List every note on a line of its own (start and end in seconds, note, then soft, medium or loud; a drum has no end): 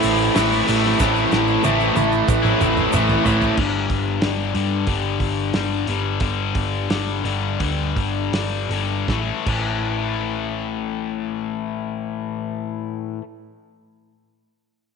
0.00 0.28 A1 loud
0.00 0.33 A2 loud
0.00 0.34 A2 medium
0.00 0.34 E3 loud
0.00 0.34 E3 medium
0.00 0.34 A3 loud
0.00 0.34 A3 medium
0.00 open hi-hat medium
0.00 shaker medium
0.05 0.36 C4 medium
0.05 0.36 E4 medium
0.19 shaker soft
0.34 0.60 A1 loud
0.34 0.83 A2 loud
0.34 0.65 E3 loud
0.34 0.53 A3 loud
0.34 0.51 C4 loud
0.34 0.49 E4 loud
0.34 snare loud
0.34 open hi-hat medium
0.34 shaker loud
0.50 0.66 A3 medium
0.50 0.67 C4 medium
0.50 0.67 E4 medium
0.50 shaker soft
0.66 0.92 A1 medium
0.66 0.99 A2 medium
0.66 0.98 E3 medium
0.66 0.84 A3 medium
0.66 0.83 C4 medium
0.66 0.81 E4 medium
0.66 open hi-hat medium
0.66 shaker medium
0.83 0.99 A3 medium
0.83 1.00 C4 medium
0.83 1.00 E4 medium
0.83 snare soft
0.98 1.24 A1 loud
0.98 1.61 A2 loud
0.98 1.29 E3 loud
0.98 1.31 A3 loud
0.98 1.32 C4 loud
0.98 1.32 E4 loud
0.98 kick loud
0.98 snare medium
0.98 shaker loud
1.16 shaker soft
1.31 1.56 A1 medium
1.31 1.62 E3 medium
1.31 1.48 A3 medium
1.31 1.47 C4 medium
1.31 1.45 E4 medium
1.31 snare medium
1.31 shaker medium
1.46 1.63 A3 medium
1.46 1.64 C4 medium
1.46 1.65 E4 medium
1.46 shaker soft
1.62 1.89 A1 medium
1.62 2.12 A2 loud
1.62 1.95 E3 loud
1.62 1.81 A3 loud
1.62 1.80 C4 loud
1.62 1.77 E4 loud
1.62 high tom medium
1.62 shaker loud
1.79 1.96 C4 medium
1.79 1.96 E4 medium
1.79 shaker soft
1.83 1.95 A3 medium
1.96 2.21 A1 loud
1.96 2.28 A2 medium
1.96 2.28 E3 medium
1.96 2.28 A3 medium
1.96 muted overdriven electric guitar stroke soft
1.96 high tom medium
1.96 shaker medium
2.12 shaker soft
2.28 2.52 A1 loud
2.28 2.92 A2 loud
2.28 2.92 E3 loud
2.28 2.93 A3 loud
2.28 kick loud
2.28 mid tom medium
2.28 shaker loud
2.43 2.58 A3 medium
2.43 2.60 C4 medium
2.43 2.60 E4 medium
2.43 mid tom medium
2.43 shaker soft
2.58 2.85 A1 loud
2.58 2.90 E3 medium
2.58 2.91 A3 medium
2.58 2.92 C4 medium
2.58 2.93 E4 loud
2.58 mid tom loud
2.58 shaker medium
2.77 mid tom medium
2.77 shaker soft
2.91 3.17 A1 medium
2.91 3.40 A2 medium
2.91 3.22 E3 medium
2.91 3.09 A3 loud
2.91 3.07 C4 loud
2.91 3.05 E4 loud
2.91 mid tom loud
2.91 shaker loud
3.07 3.24 A3 medium
3.07 3.24 C4 medium
3.07 3.26 E4 medium
3.07 floor tom medium
3.07 shaker soft
3.24 3.50 A1 medium
3.24 3.55 A2 medium
3.24 3.55 E3 medium
3.24 3.42 A3 medium
3.24 3.41 C4 medium
3.24 3.39 E4 medium
3.24 floor tom loud
3.24 shaker medium
3.40 3.56 A3 medium
3.40 3.56 C4 medium
3.40 3.55 E4 medium
3.40 floor tom loud
3.40 shaker soft
3.56 3.87 G1 medium
3.56 4.21 G2 medium
3.56 4.21 D3 medium
3.56 4.22 G3 medium
3.56 kick loud
3.56 crash medium
3.89 4.19 G1 medium
3.89 kick medium
3.89 open hi-hat soft
4.21 4.52 G1 medium
4.21 4.53 G2 medium
4.21 4.53 D3 medium
4.21 4.54 G3 medium
4.21 snare loud
4.21 open hi-hat medium
4.54 4.87 G2 medium
4.54 4.85 G2 medium
4.54 4.87 D3 medium
4.54 4.88 G3 medium
4.54 open hi-hat soft
4.87 5.18 G1 medium
4.87 5.53 G2 medium
4.87 5.54 D3 medium
4.87 5.55 G3 loud
4.87 kick loud
4.87 open hi-hat medium
5.20 5.50 G1 medium
5.20 kick medium
5.20 open hi-hat soft
5.54 5.84 G1 medium
5.54 5.87 G2 medium
5.54 5.87 D3 medium
5.54 5.89 G3 medium
5.54 snare loud
5.54 open hi-hat medium
5.87 6.18 G1 medium
5.87 6.20 G2 medium
5.87 6.20 D3 medium
5.87 6.21 G3 medium
5.87 open hi-hat soft
6.20 6.52 G1 medium
6.20 6.89 G2 medium
6.20 6.90 D3 medium
6.20 6.90 G3 medium
6.20 kick loud
6.20 open hi-hat medium
6.55 6.87 G1 medium
6.55 kick medium
6.55 open hi-hat medium
6.90 7.22 G1 medium
6.90 7.24 G2 medium
6.90 7.24 D3 medium
6.90 7.25 G3 medium
6.90 snare loud
6.90 open hi-hat medium
7.24 7.57 G1 medium
7.24 7.58 G2 medium
7.24 7.59 D3 medium
7.24 7.59 G3 medium
7.24 open hi-hat soft
7.59 7.93 D2 medium
7.59 8.32 G2 medium
7.59 8.33 D3 medium
7.59 8.33 G3 loud
7.59 kick medium
7.59 open hi-hat medium
7.97 8.30 G1 medium
7.97 kick medium
7.97 open hi-hat soft
8.32 8.67 G1 medium
8.32 8.70 G2 medium
8.32 8.70 D3 medium
8.32 8.71 G3 medium
8.32 snare medium
8.32 open hi-hat medium
8.69 9.05 G1 medium
8.69 9.06 G2 medium
8.69 9.07 D3 medium
8.69 9.07 G3 medium
8.69 open hi-hat soft
9.08 9.30 A1 medium
9.08 9.45 A2 medium
9.08 9.47 E3 medium
9.08 9.49 A3 medium
9.08 kick medium
9.08 snare medium
9.45 13.18 A1 medium
9.45 13.20 A2 medium
9.45 13.22 E3 medium
9.45 kick medium
9.45 crash medium
9.49 13.24 A3 medium